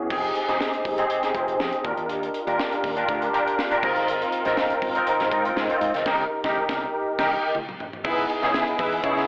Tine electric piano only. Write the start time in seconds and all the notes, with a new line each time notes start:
Already playing: E3 B3 C#4 F#4 G#4 G#5
0.10 C4 D#4 G4 G#4
0.48 C4 D#4 G4 G#4
0.98 C4 D#4 G4 G#4
1.35 C5
1.60 D#5
1.84 D4 F4 F#4 A#4
1.91 G4
2.47 D4 F4 G4 A#4
2.97 D4 F4 G4 A#4
3.33 D4 F4 G4 A#4 G5
3.58 F5
3.71 D4 F4 G4 A#4
3.83 C4 D#4 F4 A#4 D#5
4.45 C4 D#4 F4 A#4
4.95 C4 D#4 F4 A#4
5.31 C4 D#4 F4 A#4
5.69 C4 D#4 F4 C5
6.06 D#4 G4 A#4
6.44 D#4 G4 A#4
7.19 D#4 G4 A#4 G5
8.04 B3 D#4 E4 G#4
8.42 B3 D#4 E4 G#4
9.03 B3 D#4 E4 G#4